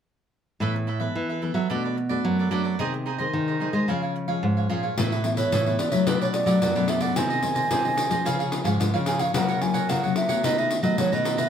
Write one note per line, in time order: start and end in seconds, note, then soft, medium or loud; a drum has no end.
0.61 1.13 A2 soft
0.61 0.86 E3 soft
0.61 0.87 B3 soft
0.61 0.73 E4 medium
0.61 0.87 E4 soft
0.61 0.74 A4 medium
0.61 0.74 B4 medium
0.61 0.74 E5 medium
0.75 muted cavaquinho stroke soft
0.87 1.00 E4 soft
0.87 1.00 A4 soft
0.87 0.99 B4 soft
0.87 0.98 E5 soft
1.00 1.15 E3 soft
1.00 1.38 B3 soft
1.00 1.38 E4 soft
1.00 1.28 A4 soft
1.00 1.28 B4 medium
1.00 1.27 E5 medium
1.16 1.41 E3 soft
1.29 1.41 A4 soft
1.29 1.42 B4 soft
1.29 1.42 E5 soft
1.42 1.59 E3 soft
1.42 1.59 B3 soft
1.42 1.55 E4 soft
1.42 1.59 E4 soft
1.42 1.55 A4 soft
1.42 1.55 B4 soft
1.42 1.54 E5 soft
1.54 1.67 F#3 medium
1.54 1.69 A4 soft
1.54 1.69 B4 soft
1.54 1.68 E5 medium
1.70 2.22 B2 soft
1.70 1.96 A3 soft
1.70 1.82 D4 medium
1.70 1.96 D4 soft
1.70 1.96 F#4 soft
1.70 1.83 A4 medium
1.70 1.83 B4 medium
1.70 1.83 D5 medium
1.84 1.96 A4 soft
1.84 1.97 B4 soft
1.84 1.97 D5 soft
1.97 muted cavaquinho stroke soft
2.09 2.47 A3 soft
2.09 2.47 D4 soft
2.09 2.48 F#4 medium
2.09 2.37 A4 soft
2.09 2.37 B4 soft
2.09 2.36 D5 medium
2.25 2.77 F#2 soft
2.25 2.48 F#3 medium
2.39 2.50 A4 soft
2.39 2.51 B4 soft
2.39 2.51 D5 soft
2.51 2.75 F#3 medium
2.51 2.75 A3 soft
2.51 2.64 D4 medium
2.51 2.75 D4 soft
2.51 2.75 F#4 soft
2.51 2.64 A4 medium
2.51 2.63 B4 medium
2.51 2.62 D5 medium
2.64 2.78 A4 soft
2.64 2.78 B4 soft
2.64 2.77 D5 soft
2.79 3.31 C3 soft
2.79 3.05 D#3 soft
2.79 3.05 G#3 soft
2.79 2.92 D#4 medium
2.79 3.05 D#4 medium
2.79 2.92 G#4 medium
2.79 2.92 C5 medium
2.79 2.93 D#5 medium
2.94 muted cavaquinho stroke soft
3.06 3.19 D#4 soft
3.06 3.19 G#4 soft
3.06 3.18 C5 soft
3.06 3.17 D#5 soft
3.18 3.56 D#3 soft
3.18 3.56 G#3 soft
3.18 3.57 D#4 soft
3.18 3.46 G#4 soft
3.18 3.46 C5 medium
3.18 3.46 D#5 medium
3.33 3.86 C3 soft
3.33 3.69 D#3 medium
3.48 3.60 G#4 soft
3.48 3.60 C5 soft
3.48 3.60 D#5 soft
3.60 3.84 D#3 soft
3.60 3.84 G#3 soft
3.60 3.73 D#4 soft
3.60 3.85 D#4 soft
3.60 3.73 G#4 soft
3.60 3.73 C5 soft
3.60 3.72 D#5 soft
3.73 3.86 G#3 medium
3.73 3.87 G#4 soft
3.73 3.87 C5 medium
3.73 3.87 D#5 medium
3.88 4.40 C#3 medium
3.88 4.25 F3 medium
3.88 4.25 G#3 soft
3.88 4.25 C#4 soft
3.88 4.01 F4 medium
3.88 4.01 G#4 medium
3.88 4.02 C#5 medium
3.88 4.01 F5 medium
4.02 4.14 G#4 soft
4.02 4.15 C#5 soft
4.02 4.15 F5 soft
4.16 muted cavaquinho stroke soft
4.28 4.65 F3 medium
4.28 4.66 G#3 soft
4.28 4.66 C#4 medium
4.28 4.56 G#4 soft
4.28 4.55 C#5 soft
4.28 4.55 F5 medium
4.43 4.95 G#2 soft
4.57 4.69 G#4 soft
4.57 4.69 C#5 soft
4.57 4.70 F5 soft
4.69 4.93 A#2 medium
4.69 4.86 F3 soft
4.69 4.86 G#3 soft
4.69 4.86 C#4 medium
4.69 4.83 F4 medium
4.69 4.83 G#4 medium
4.69 4.82 C#5 medium
4.69 4.82 F5 medium
4.83 4.97 G#4 soft
4.83 4.97 C#5 soft
4.83 4.96 F5 soft
4.97 5.50 A2 soft
4.97 5.14 E3 soft
4.97 5.14 B3 soft
4.97 5.10 E4 soft
4.97 5.14 E4 medium
4.97 5.11 A4 soft
4.97 5.11 B4 soft
4.97 5.11 E5 medium
4.97 pandeiro medium
5.12 5.24 A4 soft
5.12 5.24 B4 soft
5.12 5.24 E5 medium
5.12 pandeiro soft
5.24 5.50 E3 soft
5.24 5.50 B3 soft
5.24 5.51 E4 soft
5.24 5.37 E5 medium
5.24 muted cavaquinho stroke soft
5.24 pandeiro soft
5.37 5.51 A4 medium
5.37 5.51 B4 medium
5.37 5.80 C#5 medium
5.37 5.50 E5 medium
5.37 pandeiro soft
5.52 5.76 A2 medium
5.52 5.65 E3 soft
5.52 5.65 E4 soft
5.52 5.65 A4 soft
5.52 5.65 B4 soft
5.52 5.65 E5 soft
5.52 pandeiro medium
5.66 5.89 E3 medium
5.66 5.89 B3 soft
5.66 5.90 E4 medium
5.66 5.92 A4 soft
5.66 5.91 B4 soft
5.66 5.90 E5 soft
5.66 pandeiro soft
5.79 5.93 D5 medium
5.79 pandeiro medium
5.92 6.43 F#3 medium
5.92 6.43 A3 medium
5.92 6.43 D4 medium
5.92 6.06 A4 soft
5.92 6.06 B4 soft
5.92 6.09 C#5 medium
5.92 6.05 E5 medium
5.92 pandeiro soft
6.07 6.59 B2 medium
6.07 6.20 D4 medium
6.07 6.20 A4 medium
6.07 6.21 B4 medium
6.07 6.20 B4 medium
6.07 6.20 D5 medium
6.07 pandeiro medium
6.21 6.33 A4 medium
6.21 6.33 B4 medium
6.21 6.27 C#5 medium
6.21 6.34 D5 soft
6.21 pandeiro soft
6.33 6.91 D5 medium
6.33 muted cavaquinho stroke soft
6.33 pandeiro medium
6.46 6.70 F#3 medium
6.46 6.70 A3 medium
6.46 6.70 D4 medium
6.46 6.74 A4 soft
6.46 6.74 B4 soft
6.46 6.73 D5 medium
6.46 pandeiro soft
6.61 7.13 F#2 soft
6.61 6.73 F#3 medium
6.61 pandeiro medium
6.75 7.10 B2 medium
6.75 7.12 F#3 medium
6.75 7.12 A3 medium
6.75 7.12 D4 medium
6.75 6.88 A4 soft
6.75 6.88 B4 medium
6.75 6.88 D5 medium
6.75 pandeiro soft
6.88 7.01 D4 soft
6.88 7.01 A4 soft
6.88 7.00 B4 soft
6.88 7.00 D5 medium
6.88 7.03 E5 medium
6.88 pandeiro medium
7.01 7.15 A4 medium
7.01 7.15 B4 medium
7.01 7.14 D5 medium
7.01 7.18 F#5 medium
7.01 pandeiro soft
7.16 7.68 C3 soft
7.16 7.39 D#3 soft
7.16 7.39 G#3 soft
7.16 7.29 D#4 soft
7.16 7.39 D#4 medium
7.16 7.29 G#4 soft
7.16 7.29 C5 soft
7.16 7.29 D#5 soft
7.16 8.80 G#5 loud
7.16 pandeiro medium
7.30 7.42 G#4 soft
7.30 7.42 C5 medium
7.30 7.42 D#5 medium
7.30 pandeiro soft
7.42 7.79 D#3 soft
7.42 7.80 G#3 soft
7.42 7.80 D#4 soft
7.42 muted cavaquinho stroke soft
7.42 pandeiro soft
7.55 7.70 G#4 soft
7.55 7.69 C5 soft
7.55 7.69 D#5 medium
7.55 pandeiro soft
7.70 8.22 C3 soft
7.70 7.83 D#4 soft
7.70 7.84 G#4 soft
7.70 7.84 C5 medium
7.70 7.84 D#5 soft
7.70 pandeiro medium
7.84 8.07 D#3 soft
7.84 8.08 G#3 soft
7.84 8.08 D#4 medium
7.84 8.10 G#4 soft
7.84 8.10 C5 soft
7.84 8.09 D#5 soft
7.84 pandeiro soft
7.97 pandeiro medium
8.09 8.61 F3 soft
8.09 8.61 G#3 medium
8.09 8.61 C#4 medium
8.09 8.24 G#4 soft
8.09 8.24 C5 medium
8.09 8.23 D#5 medium
8.09 pandeiro soft
8.25 8.77 C#3 soft
8.25 8.38 F4 medium
8.25 8.38 G#4 medium
8.25 8.38 C#5 medium
8.25 8.38 F5 medium
8.25 pandeiro medium
8.39 8.51 G#4 medium
8.39 8.51 C#5 medium
8.39 8.52 F5 medium
8.39 pandeiro soft
8.52 muted cavaquinho stroke soft
8.52 pandeiro medium
8.64 8.77 G#2 medium
8.64 8.88 F3 medium
8.64 8.88 G#3 medium
8.64 8.89 C#4 medium
8.64 8.92 G#4 soft
8.64 8.92 C#5 medium
8.64 8.92 F5 medium
8.64 pandeiro medium
8.80 9.32 G#2 soft
8.80 pandeiro medium
8.94 9.28 C#3 medium
8.94 9.30 F3 medium
8.94 9.31 G#3 medium
8.94 9.31 C#4 medium
8.94 9.05 G#4 soft
8.94 9.06 C#5 medium
8.94 9.06 F5 medium
8.94 pandeiro soft
9.06 9.19 F4 soft
9.06 9.20 G#4 soft
9.06 9.19 C#5 soft
9.06 9.18 F5 soft
9.06 9.22 G#5 medium
9.06 pandeiro medium
9.19 9.34 G#4 medium
9.19 9.33 C#5 medium
9.19 9.33 F5 medium
9.19 9.34 F5 medium
9.19 pandeiro medium
9.34 9.86 C#3 soft
9.34 9.57 F#3 soft
9.34 9.58 A#3 soft
9.34 9.58 C#4 medium
9.34 9.47 F#4 soft
9.34 9.47 A#4 soft
9.34 9.48 C#5 soft
9.34 9.64 F#5 medium
9.34 9.47 F#5 soft
9.34 pandeiro medium
9.48 9.60 A#4 medium
9.48 9.61 C#5 medium
9.48 9.61 F#5 medium
9.48 pandeiro soft
9.61 9.98 F#3 soft
9.61 9.98 A#3 soft
9.61 9.98 C#4 medium
9.61 9.91 G#5 medium
9.61 muted cavaquinho stroke soft
9.61 pandeiro medium
9.74 9.88 A#4 soft
9.74 9.88 C#5 medium
9.74 9.87 F#5 medium
9.74 pandeiro soft
9.89 10.41 C#3 soft
9.89 10.02 F#4 soft
9.89 10.02 A#4 soft
9.89 10.02 C#5 soft
9.89 10.16 F#5 medium
9.89 10.02 F#5 soft
9.89 pandeiro medium
10.03 10.26 F#3 soft
10.03 10.26 A#3 soft
10.03 10.26 C#4 medium
10.03 10.29 A#4 soft
10.03 10.28 C#5 soft
10.03 10.27 F#5 soft
10.03 pandeiro soft
10.16 10.47 E5 medium
10.16 pandeiro medium
10.28 10.79 A3 medium
10.28 10.80 B3 medium
10.28 10.80 F#4 medium
10.28 10.43 A#4 soft
10.28 10.42 C#5 medium
10.28 10.42 F#5 medium
10.28 pandeiro medium
10.44 10.96 D#3 soft
10.44 10.56 D#4 medium
10.44 10.56 A4 medium
10.44 10.57 B4 medium
10.44 10.60 D#5 medium
10.44 10.57 D#5 medium
10.44 pandeiro medium
10.58 10.69 A4 soft
10.58 10.70 B4 medium
10.58 10.70 D#5 medium
10.58 10.83 E5 medium
10.58 pandeiro soft
10.70 muted cavaquinho stroke soft
10.70 pandeiro medium
10.83 10.95 F#3 medium
10.83 11.07 A3 medium
10.83 11.07 B3 soft
10.83 11.07 F#4 medium
10.83 11.11 A4 soft
10.83 11.10 B4 soft
10.83 11.10 D#5 medium
10.83 10.97 D#5 medium
10.83 pandeiro soft
10.98 11.49 D#3 soft
10.98 11.10 F#3 medium
10.98 11.15 C#5 medium
10.98 pandeiro medium
11.12 11.47 B2 medium
11.12 11.49 A3 medium
11.12 11.49 B3 medium
11.12 11.49 F#4 medium
11.12 11.23 A4 medium
11.12 11.24 B4 soft
11.12 11.24 D#5 medium
11.12 11.40 D#5 medium
11.12 pandeiro soft
11.24 11.37 D#4 soft
11.24 11.38 A4 soft
11.24 11.37 B4 soft
11.24 11.36 D#5 soft
11.24 pandeiro medium
11.37 11.49 A4 soft
11.37 11.49 B4 medium
11.37 11.49 D#5 medium
11.37 11.49 E5 medium
11.37 pandeiro medium